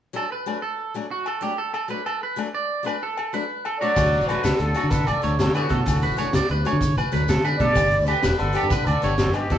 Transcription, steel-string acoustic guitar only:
0.13 0.24 F#3 medium
0.13 0.24 D4 medium
0.13 muted steel-string acoustic guitar stroke medium
0.46 0.56 F#3 medium
0.46 0.57 A3 medium
0.46 0.57 D4 medium
0.94 1.04 F#3 soft
0.94 1.05 A3 medium
0.94 1.05 D4 medium
1.41 1.51 F#3 medium
1.41 1.52 A3 medium
1.41 1.52 D4 medium
1.88 1.99 F#3 soft
1.88 1.99 A3 soft
1.88 2.00 D4 medium
2.36 2.46 F#3 medium
2.36 2.47 A3 medium
2.36 2.47 D4 medium
2.83 2.94 F#3 soft
2.83 2.94 A3 medium
2.83 2.95 D4 medium
3.33 3.42 F#3 medium
3.33 3.43 A3 medium
3.33 3.43 D4 medium
3.82 3.91 F#3 soft
3.82 3.91 A3 medium
3.82 3.91 D4 medium
3.97 4.06 F#3 medium
3.97 4.07 A3 medium
3.97 4.07 D4 medium
4.30 4.38 F#3 medium
4.30 4.39 A3 medium
4.30 4.39 D4 medium
4.74 4.84 F#3 soft
4.74 4.85 A3 medium
4.74 4.86 D4 medium
5.22 5.32 F#3 medium
5.22 5.32 A3 medium
5.22 5.33 D4 medium
5.69 5.79 F#3 medium
5.69 5.80 A3 soft
6.17 6.27 F#3 medium
6.17 6.28 A3 medium
6.17 6.28 D4 medium
6.65 6.75 F#3 medium
6.65 6.76 A3 medium
6.65 6.76 D4 medium
7.12 7.22 F#3 medium
7.12 7.22 A3 medium
7.12 7.23 D4 medium
7.60 7.70 F#3 medium
7.60 7.70 A3 medium
7.60 7.71 D4 medium
7.75 7.85 B3 medium
7.75 7.86 D4 medium
7.75 7.86 G4 medium
8.05 8.16 B3 medium
8.05 8.17 D4 medium
8.05 8.18 G4 medium
8.53 8.64 B3 medium
8.53 8.64 D4 medium
8.53 8.65 G4 medium
9.02 9.12 B3 medium
9.02 9.13 D4 medium
9.02 9.13 G4 medium
9.50 9.58 B3 soft
9.50 9.58 D4 medium
9.50 9.58 G4 medium

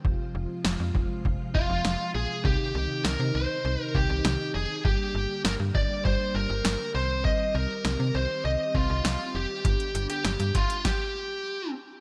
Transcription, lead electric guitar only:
1.55 2.11 F4 medium
2.15 2.45 G#4 medium
2.45 3.04 G4 medium
3.05 3.36 A#4 medium
3.35 3.83 C5 medium
3.83 3.97 A#4 medium
3.95 4.51 G4 medium
4.55 4.83 G#4 medium
4.85 5.41 G4 loud
5.45 5.53 A#4 loud
5.75 6.04 D5 medium
6.05 6.36 C5 loud
6.35 6.91 A#4 loud
6.95 7.24 C5 loud
7.25 7.53 D#5 loud
7.55 8.17 A#4 loud
8.15 8.45 C5 loud
8.45 8.76 D#5 loud
8.75 9.37 F4 medium
9.35 10.06 G4 medium
10.10 10.56 G4 medium
10.55 10.83 F4 medium
10.85 11.71 G4 medium

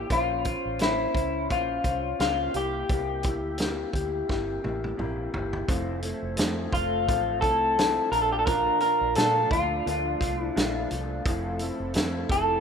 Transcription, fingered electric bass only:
0.10 0.53 A#1 medium
0.66 1.05 A1 medium
1.15 1.50 C#2 medium
1.50 1.78 A#1 medium
1.84 2.12 C2 medium
2.20 2.47 C#2 medium
2.54 2.82 C2 medium
2.89 3.43 C2 loud
3.43 3.84 D2 medium
3.94 4.22 D2 medium
4.30 4.57 G1 medium
4.65 4.92 A1 medium
4.99 5.27 A#1 medium
5.35 5.62 G1 medium
5.68 6.12 F1 loud
6.22 6.40 F1 medium
6.38 6.66 F2 medium
6.72 7.09 F1 medium
7.09 7.43 A1 loud
7.43 7.99 C2 medium
8.11 8.68 A#1 medium
9.01 9.14 A#1 medium
9.16 9.45 A#2 medium
9.51 9.79 D2 medium
9.86 10.15 D2 medium
10.20 10.49 C2 medium
10.56 10.84 A#1 medium
10.91 11.19 C2 medium
11.25 11.69 F1 loud
11.80 11.97 F1 medium
11.96 12.24 F2 medium
12.29 12.60 F1 medium

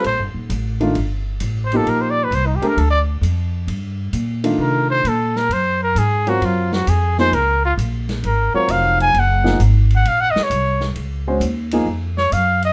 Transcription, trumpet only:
0.07 0.24 C5 medium
1.65 1.78 C5 medium
1.77 1.91 A4 medium
1.89 2.03 A#4 medium
2.02 2.12 C5 medium
2.11 2.26 D5 loud
2.24 2.36 B4 medium
2.35 2.48 C5 medium
2.47 2.57 D#4 medium
2.56 2.69 G4 medium
2.68 2.81 A#4 loud
2.79 2.90 A4 medium
2.90 3.00 D5 medium
4.62 4.89 A#4 medium
4.90 5.10 C5 loud
5.08 5.38 A4 medium
5.37 5.55 A#4 medium
5.53 5.82 C5 loud
5.83 6.00 A#4 medium
5.98 6.31 G#4 medium
6.29 6.46 F#4 medium
6.45 6.75 F4 medium
6.74 6.91 F#4 medium
6.89 7.19 G#4 medium
7.20 7.36 C5 loud
7.34 7.64 A#4 medium
7.65 7.73 F4 medium
8.26 8.53 A#4 medium
8.55 8.73 C#5 medium
8.71 9.00 F5 medium
9.02 9.21 G#5 loud
9.19 9.62 F#5 medium
9.96 10.10 F#5 medium
10.08 10.22 F5 medium
10.21 10.32 F#5 loud
10.31 10.45 D#5 medium
10.43 10.89 C#5 medium
12.18 12.34 C#5 loud
12.33 12.63 F5 medium
12.65 12.73 D#5 medium

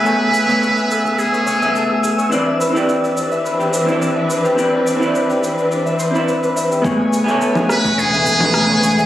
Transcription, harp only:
0.00 0.11 G#4 medium
0.00 0.48 C#5 medium
0.00 0.76 E5 medium
0.05 0.26 A4 medium
0.20 0.33 G#4 medium
0.33 0.96 G#4 medium
0.48 0.61 C#5 medium
0.61 1.33 C#5 medium
0.76 1.62 E5 medium
0.90 1.10 A4 medium
1.04 1.18 G#4 medium
1.18 1.81 G#4 medium
1.33 1.46 C#5 medium
1.46 2.18 C#5 medium
1.62 2.46 E5 medium
1.75 1.96 A4 medium
1.90 2.03 G#4 medium
2.03 2.81 G#4 medium
2.18 2.37 C#5 medium
2.31 3.03 D5 medium
2.46 3.31 E5 medium
2.60 3.44 B4 medium
2.75 2.88 G4 medium
2.89 3.59 G4 medium
3.04 3.16 D5 medium
3.16 3.87 D5 medium
3.31 4.16 E5 medium
3.44 4.29 B4 medium
3.59 3.72 G4 loud
3.73 4.44 G4 medium
3.87 4.01 D5 medium
4.01 4.72 D5 medium
4.16 5.00 E5 medium
4.29 5.14 B4 medium
4.44 4.57 G4 medium
4.58 5.29 G4 medium
4.73 4.86 D5 medium
4.86 5.57 D5 medium
5.01 5.85 E5 medium
5.14 6.05 B4 medium
5.29 5.42 G4 medium
5.42 6.70 G4 medium
5.57 5.70 D5 medium
5.71 6.14 D5 medium
5.86 6.56 E5 medium
5.99 6.34 C5 medium
6.14 7.05 D5 medium
6.28 6.42 B4 medium
6.42 8.47 B4 medium
6.56 7.27 E5 medium
6.71 6.90 G4 medium
6.84 7.47 G#4 medium
6.99 7.12 C#5 medium
7.12 7.85 C#5 medium
7.27 8.13 E5 medium
7.41 7.62 A4 medium
7.56 7.69 G#4 loud
7.70 8.33 G#4 medium
7.85 7.98 C#5 medium
7.98 8.69 C#5 medium
8.13 8.98 E5 medium
8.27 8.48 A4 medium
8.42 8.54 G#4 loud
8.54 9.06 G#4 medium
8.70 8.83 C#5 medium
8.83 9.06 C#5 medium
8.98 9.06 E5 medium

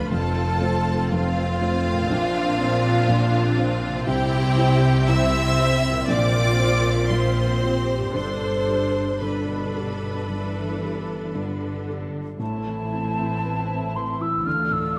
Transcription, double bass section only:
0.00 0.11 D2 medium
0.10 2.06 F1 medium
2.10 4.07 A#1 medium
4.07 6.06 C2 medium
6.10 8.15 A#1 medium
8.15 12.15 G1 medium
12.41 14.42 A1 medium
14.47 14.99 D2 medium

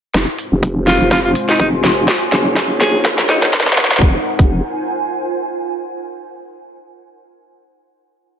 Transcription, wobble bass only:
0.14 0.26 F1 medium
0.52 0.98 F1 medium
1.00 1.09 F1 loud
1.11 1.34 F1 loud
1.60 1.82 F1 medium
1.84 2.06 F1 loud
2.32 2.79 F#1 medium
2.81 3.16 A#1 loud
3.18 3.51 A#1 loud
3.53 3.76 F#1 loud
3.77 4.00 A#1 loud
4.02 4.16 F1 loud
4.39 4.62 F1 loud

